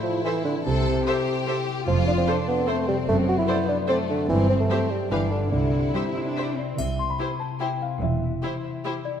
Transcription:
Already playing: harp A2 C4 E4 A4 E5, violin section E4
0.03 bassoon F3, harp C5
0.24 bassoon E3, harp E4, viola section A4 C5, violin section E5
0.45 bassoon D3, harp C4
0.65 double bass section C2, harp C3, cello section C3, bassoon C3, violin section A4
0.86 harp C4
1.06 violin section G4 E5, harp A4, viola section A4 C5
1.27 harp C5
1.47 harp E4, viola section A4 C5, violin section E5
1.68 harp C4
1.87 double bass section F1, harp F2, cello section F2, bassoon F3, violin section F4
2.07 harp C4, bassoon D4
2.17 bassoon C4
2.27 violin section D4 C5, viola section A4 C5, harp A4
2.48 bassoon B3, harp C5
2.67 bassoon A3, violin section C4 C5, harp C4, viola section A4 C5
2.88 harp C3, bassoon G3
3.07 double bass section F#1, cello section F#2, harp F#2, bassoon A3
3.29 harp C4, bassoon F#4
3.38 bassoon E4
3.48 violin section B3 D5, viola section A4 C5, harp A4
3.68 bassoon D4, harp C5
3.88 violin section A3 D5, bassoon C4, harp D4, viola section A4 C5
4.09 bassoon D3, harp C4
4.29 double bass section G1, cello section G2, harp G2, bassoon E3, violin section C4
4.49 harp C4, bassoon C4
4.60 bassoon A3
4.70 violin section C4 E5, harp G4, viola section G4 C5
4.90 bassoon G3, harp C5
5.10 double bass section G1, cello section G2, harp G2, bassoon E3, violin section D4 F5, viola section G4 B4
5.31 bassoon D3, harp F4 G4
5.52 double bass section C2, cello section C3, harp C3, bassoon D3, violin section E4
5.73 harp C4
5.94 bassoon C3, cello section G3, harp G4, viola section G4 C5, violin section E5
6.14 cello section E4, harp C5
6.25 cello section D4
6.36 harp E4, viola section G4 C5, violin section E5
6.57 cello section C4, harp C4, celesta D5
6.78 double bass section C2, cello section C3, harp C3, celesta E5, triangle
6.99 harp C4, celesta C6
7.10 celesta B5
7.19 viola section E4, harp G4, violin section G4 C5
7.40 harp C5, celesta A5
7.60 viola section E4, harp E4, violin section G4 C5, celesta G5
7.81 harp C4, celesta F5
8.01 double bass section E1, cello section E2, harp E3, celesta E5
8.22 harp E4
8.43 viola section E4, violin section G4 C5, harp C5
8.64 harp E5
8.85 viola section E4, violin section G4 C5, harp G4
9.05 harp E4, celesta D5

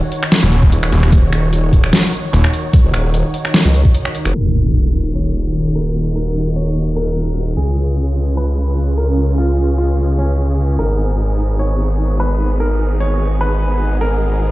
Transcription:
Already playing: supersaw synth D#3 D#4 F#4 C#5
0.12 open hi-hat
0.23 finger snap
0.32 snare, closed hi-hat
0.43 detuned saw bass D#1
0.52 closed hi-hat
0.63 detuned saw bass D#1, kick
0.72 wobble bass D#1, closed hi-hat
0.83 finger snap
0.92 detuned saw bass D#1, closed hi-hat
1.03 finger snap
1.12 wobble bass D#1, kick, closed hi-hat
1.33 finger snap, closed hi-hat
1.53 closed hi-hat
1.73 wobble bass D#1, kick, open hi-hat
1.84 finger snap
1.93 snare, closed hi-hat
2.13 closed hi-hat
2.33 detuned saw bass D#1, closed hi-hat
2.44 finger snap
2.53 closed hi-hat
2.73 kick, closed hi-hat
2.84 wobble bass D#1
2.94 finger snap, closed hi-hat
3.14 closed hi-hat
3.34 open hi-hat
3.45 finger snap
3.54 snare, closed hi-hat
3.65 wobble bass C#2
3.74 closed hi-hat
3.85 kick
3.94 closed hi-hat
4.05 finger snap
4.15 closed hi-hat
4.25 wobble bass F1, finger snap, closed hi-hat
4.34 wobble bass D#1, supersaw synth D#3 F#4, grand piano A#4, impact
4.95 open hi-hat
5.15 grand piano C#5
5.75 grand piano A#4
6.16 grand piano A#4
6.56 grand piano C#5, open hi-hat
6.96 grand piano A#4
7.57 wobble bass C#2, supersaw synth C#3 C#4 F4 G#4, grand piano G#4
8.17 open hi-hat
8.37 grand piano B4
8.98 grand piano A#4
9.38 grand piano F4
9.78 grand piano F4, open hi-hat
10.19 grand piano C#4
10.79 wobble bass G#1, supersaw synth B3 D#4, grand piano A#4
11.39 open hi-hat
11.59 grand piano C#5
12.20 grand piano B4
12.60 grand piano A#4
13.00 grand piano C#5, open hi-hat
13.41 grand piano B4
14.01 grand piano A#4

